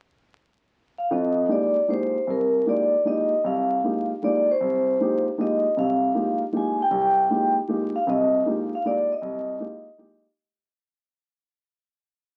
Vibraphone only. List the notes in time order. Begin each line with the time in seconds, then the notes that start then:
0.98 F5
1.12 D#5
1.51 D5
1.90 C5
2.30 A#4
2.69 D5
3.07 D#5
3.46 F5
4.24 D5
4.51 C5
5.41 D#5
5.79 F5
6.57 G#5
6.82 G5
7.96 F5
8.09 D#5
8.75 F5
8.87 D5
9.12 D#5